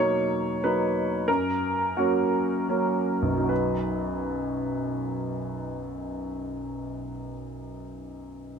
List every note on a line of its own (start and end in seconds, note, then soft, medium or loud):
0.00 1.30 B2 soft
0.00 0.58 F#3 soft
0.00 0.58 A#3 soft
0.00 0.58 D#4 soft
0.00 0.61 C#5 medium
0.63 1.24 F#3 soft
0.63 1.25 A#3 soft
0.63 1.25 D#4 soft
0.63 1.29 B4 medium
1.28 1.95 F#2 soft
1.28 1.97 A#4 medium
1.97 2.67 F#3 soft
1.97 2.67 A#3 soft
1.97 2.68 C#4 soft
1.97 3.10 F#4 medium
2.69 3.32 F#3 soft
2.69 3.45 A#3 soft
2.69 3.45 C#4 soft
3.22 7.05 B1 soft
3.28 7.11 F#2 soft
3.34 7.17 F#3 soft
3.38 7.21 D#4 soft
3.44 7.27 F#4 soft
3.49 7.32 B4 soft